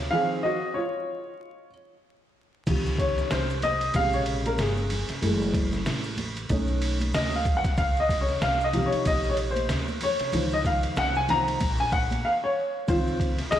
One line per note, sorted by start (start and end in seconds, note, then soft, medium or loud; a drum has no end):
0.00 0.13 C#5 medium
0.11 0.56 D#3 medium
0.11 0.56 F3 soft
0.11 0.57 C4 medium
0.11 0.42 G#4 medium
0.11 0.44 F5 loud
0.43 0.74 F#4 medium
0.43 0.76 D#5 medium
0.74 1.68 F4 medium
0.74 1.67 C#5 medium
2.67 3.28 C#2 loud
2.67 3.91 C3 medium
2.67 3.90 D#3 medium
2.67 3.91 F3 soft
2.67 kick loud
2.67 crash medium
2.67 ride medium
2.67 maracas medium
2.86 maracas soft
2.98 3.32 C#5 medium
2.98 kick medium
2.98 snare soft
2.98 ride medium
2.98 maracas soft
3.18 snare soft
3.18 maracas soft
3.31 3.91 C2 medium
3.31 3.64 C5 medium
3.31 snare loud
3.31 hi-hat pedal soft
3.31 ride medium
3.31 maracas medium
3.50 maracas soft
3.62 3.96 D#5 loud
3.62 ride medium
3.62 high conga medium
3.62 low conga medium
3.62 maracas soft
3.81 ride soft
3.81 maracas soft
3.94 4.55 A#1 loud
3.94 4.87 C3 medium
3.94 4.86 C#3 medium
3.94 4.86 G#3 medium
3.94 4.15 F5 loud
3.94 kick medium
3.94 ride medium
3.94 high conga soft
3.94 maracas medium
4.13 4.21 C#5 medium
4.13 maracas soft
4.26 ride medium
4.26 maracas soft
4.46 4.60 A#4 medium
4.46 ride soft
4.46 high conga medium
4.46 maracas soft
4.58 5.06 G1 medium
4.58 5.51 G#4 medium
4.58 snare medium
4.58 hi-hat pedal medium
4.58 ride medium
4.58 maracas medium
4.77 high conga medium
4.77 maracas soft
4.90 ride medium
4.90 low conga medium
4.90 maracas soft
5.09 muted upright bass stroke soft
5.09 snare soft
5.09 ride soft
5.09 maracas soft
5.22 5.83 F#1 loud
5.22 6.14 E3 medium
5.22 6.14 G#3 soft
5.22 6.14 A3 medium
5.22 ride medium
5.22 maracas medium
5.41 maracas soft
5.54 kick medium
5.54 snare soft
5.54 ride medium
5.54 maracas soft
5.72 snare soft
5.72 maracas soft
5.86 6.47 A1 medium
5.86 snare loud
5.86 hi-hat pedal soft
5.86 ride medium
5.86 maracas medium
6.04 maracas soft
6.17 ride medium
6.17 high conga medium
6.17 low conga medium
6.17 maracas soft
6.37 ride soft
6.37 maracas soft
6.49 7.11 B1 loud
6.49 7.74 A3 medium
6.49 7.74 C#4 medium
6.49 7.74 D#4 medium
6.49 kick medium
6.49 ride medium
6.49 high conga medium
6.49 maracas medium
6.67 maracas soft
6.81 ride medium
6.81 maracas soft
7.00 ride soft
7.00 high conga medium
7.00 maracas soft
7.13 7.62 D2 loud
7.13 7.36 D#5 medium
7.13 snare loud
7.13 hi-hat pedal medium
7.13 ride medium
7.13 maracas medium
7.33 7.57 F5 medium
7.33 high conga medium
7.33 maracas soft
7.45 kick medium
7.45 ride medium
7.45 low conga medium
7.45 maracas soft
7.57 7.79 F#5 medium
7.64 muted upright bass stroke soft
7.64 kick medium
7.64 snare soft
7.64 ride medium
7.64 maracas soft
7.77 8.38 C#2 loud
7.77 7.98 F5 medium
7.77 kick loud
7.77 ride medium
7.77 maracas medium
7.96 8.21 D#5 medium
7.96 maracas soft
8.09 kick medium
8.09 snare soft
8.09 ride medium
8.09 maracas soft
8.21 8.43 C#5 medium
8.28 snare soft
8.28 maracas soft
8.42 8.90 C2 medium
8.42 8.62 F5 medium
8.42 snare loud
8.42 hi-hat pedal medium
8.42 ride medium
8.42 maracas medium
8.61 8.85 D#5 medium
8.61 maracas soft
8.73 11.25 C3 medium
8.73 10.32 F3 medium
8.73 11.25 D#4 medium
8.73 ride medium
8.73 high conga medium
8.73 low conga medium
8.73 maracas soft
8.86 9.07 C#5 medium
8.92 muted upright bass stroke soft
8.92 ride soft
8.92 maracas soft
9.05 9.66 A#1 loud
9.05 9.26 D#5 medium
9.05 kick medium
9.05 ride medium
9.05 high conga soft
9.05 maracas medium
9.24 maracas soft
9.30 9.35 C#5 medium
9.37 ride medium
9.37 maracas soft
9.51 9.79 C5 medium
9.56 ride soft
9.56 high conga medium
9.56 maracas soft
9.69 10.17 D2 medium
9.69 snare loud
9.69 hi-hat pedal medium
9.69 ride medium
9.69 maracas medium
9.88 high conga medium
9.88 maracas soft
10.01 10.54 C#5 loud
10.01 ride medium
10.01 low conga medium
10.01 maracas soft
10.19 muted upright bass stroke soft
10.19 snare soft
10.19 ride medium
10.19 maracas soft
10.32 10.93 C#2 loud
10.32 11.27 D#3 medium
10.32 11.27 F3 soft
10.32 12.85 C5 medium
10.32 ride medium
10.32 maracas medium
10.51 10.58 D#5 medium
10.51 maracas soft
10.65 10.99 F5 medium
10.65 kick medium
10.65 snare soft
10.65 ride medium
10.65 maracas soft
10.83 ride medium
10.83 maracas soft
10.96 11.57 C2 medium
10.96 11.15 F#5 loud
10.96 snare loud
10.96 hi-hat pedal medium
10.96 ride medium
10.96 maracas medium
11.15 11.28 G#5 loud
11.15 maracas medium
11.28 11.57 D#3 medium
11.28 11.57 F3 medium
11.28 11.58 C4 medium
11.28 11.82 A#5 loud
11.28 ride medium
11.28 high conga medium
11.28 low conga medium
11.28 maracas soft
11.47 ride soft
11.47 maracas soft
11.60 12.22 A#1 loud
11.60 kick medium
11.60 ride medium
11.60 high conga medium
11.60 maracas medium
11.78 11.93 G#5 loud
11.78 maracas soft
11.92 12.25 F#5 medium
11.92 kick loud
11.92 ride medium
11.92 maracas soft
12.11 ride soft
12.11 high conga medium
12.11 maracas soft
12.25 12.30 F5 medium
12.44 12.85 C#5 medium
12.87 13.49 C#2 loud
12.87 13.32 D#3 soft
12.87 13.33 F3 soft
12.87 13.33 C4 medium
12.87 13.49 F4 medium
12.87 13.54 C5 medium
12.87 kick loud
12.87 ride medium
12.87 maracas medium
13.07 maracas soft
13.20 kick medium
13.20 ride medium
13.20 high conga soft
13.20 maracas soft
13.39 snare soft
13.39 ride soft
13.39 maracas soft
13.51 13.60 C2 medium
13.51 13.60 G#4 medium
13.51 13.60 D#5 loud
13.51 snare loud
13.51 hi-hat pedal soft
13.51 ride medium
13.51 maracas medium